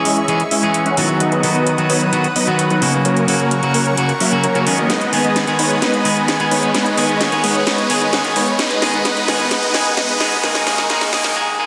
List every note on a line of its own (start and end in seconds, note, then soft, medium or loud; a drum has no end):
0.00 0.25 E3 medium
0.00 0.25 G#3 medium
0.00 0.26 C#4 medium
0.00 0.26 G#4 medium
0.00 1.17 G#4 medium
0.00 1.19 E5 medium
0.00 1.19 C#6 medium
0.00 riser medium
0.05 0.21 C#2 medium
0.05 0.24 G#3 medium
0.05 0.24 C#4 medium
0.05 0.24 E4 medium
0.05 0.24 C#5 medium
0.05 0.24 D#5 loud
0.05 open hi-hat loud
0.17 closed hi-hat soft
0.28 0.44 G#1 loud
0.28 0.41 E3 medium
0.28 0.41 G#3 medium
0.28 0.42 C#4 medium
0.28 0.42 G#4 medium
0.28 closed hi-hat medium
0.40 closed hi-hat soft
0.51 0.59 C#2 medium
0.51 0.63 G#3 medium
0.51 0.63 C#4 medium
0.51 0.63 E4 medium
0.51 0.63 C#5 medium
0.51 0.63 E5 medium
0.51 open hi-hat loud
0.62 0.94 E3 medium
0.62 0.95 G#3 medium
0.62 0.95 C#4 medium
0.62 0.95 G#4 medium
0.62 closed hi-hat soft
0.74 0.90 C#2 medium
0.74 closed hi-hat medium
0.86 1.04 G#3 medium
0.86 1.04 C#4 medium
0.86 1.04 E4 medium
0.86 1.04 C#5 medium
0.86 1.04 F#5 medium
0.86 closed hi-hat soft
0.97 1.13 C#2 medium
0.97 1.41 D#3 medium
0.97 1.41 F#3 medium
0.97 1.41 B3 medium
0.97 1.41 F#4 loud
0.97 open hi-hat loud
1.20 1.36 B1 medium
1.20 1.52 F#3 medium
1.20 1.52 B3 medium
1.20 1.52 D#4 medium
1.20 1.52 B4 medium
1.20 3.03 B4 medium
1.20 1.52 D#5 medium
1.20 3.03 F#5 medium
1.20 3.03 D#6 medium
1.20 closed hi-hat medium
1.32 closed hi-hat soft
1.43 1.51 B1 loud
1.43 1.75 D#3 medium
1.43 1.75 F#3 medium
1.43 1.76 B3 medium
1.43 1.76 F#4 medium
1.43 open hi-hat loud
1.55 1.67 F#3 medium
1.55 1.67 B3 medium
1.55 1.67 D#4 medium
1.55 1.67 B4 medium
1.55 1.67 D#5 medium
1.55 closed hi-hat soft
1.67 1.82 B1 medium
1.67 closed hi-hat medium
1.78 2.10 D#3 medium
1.78 2.10 F#3 medium
1.78 2.10 B3 medium
1.78 2.10 F#4 medium
1.78 closed hi-hat soft
1.90 2.05 B1 medium
1.90 2.08 F#3 medium
1.90 2.08 B3 medium
1.90 2.08 D#4 medium
1.90 2.08 B4 medium
1.90 2.08 C#5 loud
1.90 open hi-hat loud
2.01 closed hi-hat soft
2.12 2.28 F#1 medium
2.12 2.26 D#3 medium
2.12 2.26 F#3 medium
2.12 2.26 B3 medium
2.12 2.27 F#4 medium
2.12 closed hi-hat medium
2.24 closed hi-hat soft
2.36 2.44 B1 medium
2.36 2.47 F#3 medium
2.36 2.47 B3 medium
2.36 2.47 D#4 medium
2.36 2.47 B4 medium
2.36 2.47 D#5 medium
2.36 open hi-hat loud
2.47 2.79 D#3 medium
2.47 2.79 F#3 medium
2.47 2.79 B3 medium
2.47 2.80 F#4 medium
2.47 closed hi-hat soft
2.59 2.74 B1 medium
2.59 closed hi-hat medium
2.70 2.89 F#3 medium
2.70 2.89 B3 medium
2.70 2.89 D#4 medium
2.70 2.89 B4 medium
2.70 2.89 F#5 medium
2.70 closed hi-hat soft
2.81 2.98 B1 medium
2.81 3.25 C#3 medium
2.81 3.25 F#3 medium
2.81 3.26 A#3 medium
2.81 3.26 F#4 medium
2.81 open hi-hat loud
2.93 closed hi-hat soft
3.05 3.21 F#1 loud
3.05 3.37 F#3 medium
3.05 3.37 A#3 medium
3.05 3.37 C#4 medium
3.05 3.37 A#4 medium
3.05 4.88 A#4 medium
3.05 3.37 C#5 medium
3.05 4.88 F#5 medium
3.05 4.88 C#6 medium
3.05 closed hi-hat medium
3.17 closed hi-hat soft
3.27 3.36 F#1 loud
3.27 3.60 C#3 medium
3.27 3.60 F#3 medium
3.27 3.60 A#3 medium
3.27 3.60 F#4 medium
3.27 open hi-hat loud
3.40 3.51 F#3 medium
3.40 3.51 A#3 medium
3.40 3.51 C#4 medium
3.40 3.51 A#4 medium
3.40 3.51 C#5 medium
3.40 closed hi-hat soft
3.51 3.67 F#1 medium
3.51 closed hi-hat medium
3.62 3.94 C#3 medium
3.62 3.95 F#3 medium
3.62 3.95 A#3 medium
3.62 3.95 F#4 medium
3.62 closed hi-hat soft
3.74 3.90 F#1 medium
3.74 3.93 F#3 medium
3.74 3.93 A#3 medium
3.74 3.93 C#4 medium
3.74 3.93 A#4 medium
3.74 3.93 C#5 loud
3.74 open hi-hat loud
3.86 closed hi-hat soft
3.97 4.13 C#2 loud
3.97 4.11 C#3 medium
3.97 4.11 F#3 medium
3.97 4.11 A#3 medium
3.97 4.11 F#4 medium
3.97 closed hi-hat medium
4.09 closed hi-hat soft
4.20 4.32 F#3 medium
4.20 4.32 A#3 medium
4.20 4.32 C#4 medium
4.20 4.32 A#4 medium
4.20 4.32 E5 loud
4.20 open hi-hat loud
4.31 4.45 C#3 medium
4.31 4.45 F#3 medium
4.31 4.45 A#3 medium
4.31 4.46 F#4 medium
4.31 closed hi-hat soft
4.44 4.59 F#1 medium
4.44 4.75 F#3 medium
4.44 4.75 A#3 medium
4.44 4.76 C#4 medium
4.44 4.75 A#4 medium
4.44 4.75 C#5 medium
4.44 closed hi-hat medium
4.54 4.65 C#3 medium
4.54 4.65 F#3 medium
4.54 4.65 A#3 medium
4.54 4.65 F#4 medium
4.54 closed hi-hat soft
4.66 4.82 F#1 medium
4.66 4.90 D#3 medium
4.66 4.90 G#3 medium
4.66 4.90 B3 medium
4.66 4.90 G#4 medium
4.66 open hi-hat loud
4.78 4.88 F#3 medium
4.78 4.88 A#3 medium
4.78 4.88 C#4 medium
4.78 4.88 A#4 medium
4.78 4.88 D#5 medium
4.90 5.05 G#1 medium
4.90 5.22 G#3 medium
4.90 5.22 B3 medium
4.90 5.22 D#4 medium
4.90 5.22 B4 medium
4.90 6.73 B4 medium
4.90 5.22 D#5 medium
4.90 8.55 G#5 medium
4.90 6.73 D#6 medium
4.90 snare soft
4.90 closed hi-hat medium
5.01 closed hi-hat soft
5.12 5.21 G#1 loud
5.12 5.45 D#3 medium
5.12 5.45 G#3 medium
5.12 5.45 B3 medium
5.12 5.45 G#4 medium
5.12 open hi-hat medium
5.24 5.36 G#3 medium
5.24 5.36 B3 medium
5.24 5.36 D#4 medium
5.24 5.36 B4 medium
5.24 5.36 D#5 medium
5.24 closed hi-hat soft
5.36 5.51 G#1 medium
5.36 snare soft
5.36 closed hi-hat medium
5.47 5.79 D#3 medium
5.47 5.79 G#3 medium
5.47 5.79 B3 medium
5.47 5.80 G#4 medium
5.47 closed hi-hat soft
5.59 5.74 G#1 medium
5.59 5.78 G#3 medium
5.59 5.78 B3 medium
5.59 5.78 D#4 medium
5.59 5.78 B4 medium
5.59 5.78 C#5 medium
5.59 open hi-hat loud
5.71 closed hi-hat soft
5.82 5.98 D#2 loud
5.82 6.14 G#3 medium
5.82 6.14 B3 medium
5.82 6.14 D#4 medium
5.82 6.14 B4 medium
5.82 6.14 D#5 medium
5.82 snare soft
5.82 closed hi-hat medium
5.94 closed hi-hat soft
6.05 6.13 G#1 medium
6.05 6.37 D#3 medium
6.05 6.37 G#3 medium
6.05 6.37 B3 medium
6.05 6.37 G#4 medium
6.05 open hi-hat loud
6.17 6.28 G#3 medium
6.17 6.28 B3 medium
6.17 6.28 D#4 medium
6.17 6.28 B4 medium
6.17 6.28 D#5 medium
6.17 closed hi-hat soft
6.28 6.44 G#1 medium
6.28 snare medium
6.28 closed hi-hat medium
6.39 6.71 D#3 medium
6.39 6.72 G#3 medium
6.39 6.72 B3 medium
6.39 6.72 G#4 medium
6.39 closed hi-hat soft
6.51 6.67 G#1 medium
6.51 6.70 G#3 medium
6.51 6.70 B3 medium
6.51 6.70 D#4 medium
6.51 6.70 B4 medium
6.51 6.70 C#5 loud
6.51 open hi-hat medium
6.63 closed hi-hat soft
6.74 6.90 C#2 loud
6.74 7.06 G#3 medium
6.74 7.06 B3 medium
6.74 7.06 D#4 medium
6.74 7.06 B4 medium
6.74 8.57 C#5 medium
6.74 7.06 D#5 medium
6.74 snare medium
6.74 closed hi-hat medium
6.86 closed hi-hat soft
6.97 7.05 C#2 loud
6.97 7.29 D#3 medium
6.97 7.29 G#3 medium
6.97 7.29 B3 medium
6.97 7.30 G#4 medium
6.97 open hi-hat medium
7.09 7.21 G#3 medium
7.09 7.21 B3 medium
7.09 7.21 D#4 medium
7.09 7.21 B4 medium
7.09 7.21 D#5 medium
7.09 closed hi-hat soft
7.21 7.36 C#2 medium
7.21 snare medium
7.21 closed hi-hat medium
7.31 7.64 D#3 medium
7.31 7.64 G#3 medium
7.31 7.64 B3 medium
7.31 7.64 G#4 medium
7.31 closed hi-hat soft
7.43 7.59 C#2 medium
7.43 7.62 G#3 medium
7.43 7.62 B3 medium
7.43 7.62 D#4 medium
7.43 7.62 B4 medium
7.43 7.62 C#5 loud
7.43 open hi-hat loud
7.55 closed hi-hat soft
7.67 7.82 G#1 loud
7.67 7.99 G#3 medium
7.67 7.99 B3 medium
7.67 7.99 D#4 medium
7.67 7.99 B4 medium
7.67 7.99 D#5 medium
7.67 snare medium
7.67 closed hi-hat medium
7.78 closed hi-hat soft
7.89 7.98 C#2 medium
7.89 8.21 D#3 medium
7.89 8.22 G#3 medium
7.89 8.22 B3 medium
7.89 8.22 G#4 loud
7.89 open hi-hat loud
8.01 8.13 G#3 medium
8.01 8.13 B3 medium
8.01 8.13 D#4 medium
8.01 8.13 B4 medium
8.01 8.13 D#5 medium
8.01 closed hi-hat soft
8.13 8.28 C#2 medium
8.13 snare medium
8.13 closed hi-hat medium
8.24 8.56 D#3 medium
8.24 8.56 G#3 medium
8.24 8.56 B3 medium
8.24 8.57 G#4 medium
8.24 closed hi-hat soft
8.36 8.51 C#2 medium
8.36 8.54 G#3 medium
8.36 8.54 B3 medium
8.36 8.54 D#4 medium
8.36 8.54 B4 medium
8.36 8.54 C#5 loud
8.36 open hi-hat loud
8.59 8.75 B1 medium
8.59 8.91 G#3 medium
8.59 8.91 B3 medium
8.59 8.91 D#4 medium
8.59 8.91 B4 medium
8.59 10.42 B4 medium
8.59 8.91 D#5 medium
8.59 11.33 F#5 medium
8.59 10.42 D#6 medium
8.59 snare medium
8.59 closed hi-hat medium
8.71 closed hi-hat soft
8.81 9.03 D#3 medium
8.81 9.03 G#3 medium
8.81 9.03 B3 medium
8.81 9.04 G#4 loud
8.81 snare medium
8.81 open hi-hat medium
8.94 9.03 G#3 medium
8.94 9.03 B3 medium
8.94 9.03 D#4 medium
8.94 9.03 B4 medium
8.94 9.03 D#5 medium
8.94 closed hi-hat soft
9.05 9.21 B1 loud
9.05 9.37 G#3 medium
9.05 9.37 B3 medium
9.05 9.37 D#4 medium
9.05 9.37 B4 medium
9.05 9.37 D#5 medium
9.05 snare medium
9.05 closed hi-hat medium
9.17 closed hi-hat soft
9.28 9.44 B1 loud
9.28 9.49 D#3 medium
9.28 9.49 G#3 medium
9.28 9.50 B3 medium
9.28 9.50 G#4 medium
9.28 snare medium
9.28 open hi-hat loud
9.40 9.49 G#3 medium
9.40 9.49 B3 medium
9.40 9.49 D#4 medium
9.40 9.49 B4 medium
9.40 9.49 D#5 medium
9.40 closed hi-hat soft
9.51 9.67 F#1 loud
9.51 9.83 G#3 medium
9.51 9.83 B3 medium
9.51 9.83 D#4 medium
9.51 9.83 B4 medium
9.51 9.83 D#5 medium
9.51 snare medium
9.51 closed hi-hat medium
9.63 closed hi-hat soft
9.74 9.95 D#3 medium
9.74 9.96 G#3 medium
9.74 9.96 B3 medium
9.74 9.96 G#4 loud
9.74 snare medium
9.74 open hi-hat loud
9.86 9.96 G#3 medium
9.86 9.96 B3 medium
9.86 9.96 D#4 medium
9.86 9.96 B4 medium
9.86 9.96 D#5 medium
9.86 closed hi-hat soft
9.97 10.13 B1 medium
9.97 10.29 G#3 medium
9.97 10.29 B3 medium
9.97 10.29 D#4 medium
9.97 10.29 B4 medium
9.97 10.29 D#5 medium
9.97 snare medium
9.97 closed hi-hat loud
10.09 closed hi-hat soft
10.20 10.36 B1 medium
10.20 10.42 D#3 medium
10.20 10.42 G#3 medium
10.20 10.42 B3 medium
10.20 10.42 G#4 loud
10.20 snare medium
10.20 open hi-hat medium
10.32 10.42 G#3 medium
10.32 10.42 B3 medium
10.32 10.42 D#4 medium
10.32 10.42 B4 medium
10.32 10.42 D#5 medium
10.32 closed hi-hat soft
10.43 10.65 D#3 medium
10.43 10.65 G#3 medium
10.43 10.65 A#3 medium
10.43 10.65 D#4 medium
10.43 10.65 G#4 medium
10.43 11.35 A#4 medium
10.43 10.65 A#4 medium
10.43 10.65 D#5 medium
10.43 11.35 C#6 medium
10.43 snare medium
10.43 closed hi-hat medium
10.55 snare medium
10.55 closed hi-hat soft
10.66 10.88 D#3 medium
10.66 10.88 G#3 medium
10.66 10.88 A#3 medium
10.66 10.88 D#4 medium
10.66 10.88 G#4 loud
10.66 10.88 A#4 medium
10.66 10.88 D#5 medium
10.66 snare medium
10.66 open hi-hat loud
10.78 snare medium
10.89 11.11 D#3 medium
10.89 11.11 G#3 medium
10.89 11.11 A#3 medium
10.89 11.11 D#4 medium
10.89 11.11 G#4 loud
10.89 11.11 A#4 medium
10.89 11.11 D#5 medium
10.89 snare medium
10.89 closed hi-hat medium
11.01 snare medium
11.01 open hi-hat medium
11.12 11.34 D#3 medium
11.12 11.34 G#3 medium
11.12 11.34 A#3 medium
11.12 11.34 D#4 medium
11.12 11.34 G#4 loud
11.12 11.34 A#4 medium
11.12 11.34 D#5 medium
11.12 snare loud
11.12 open hi-hat loud
11.24 snare medium
11.35 11.57 D#3 loud
11.35 11.57 G#3 medium
11.35 11.57 A#3 medium
11.35 11.57 G#4 loud
11.35 swell medium
11.58 11.66 D#3 medium
11.58 11.66 G#3 medium
11.58 11.66 A#3 medium
11.58 11.66 G#4 loud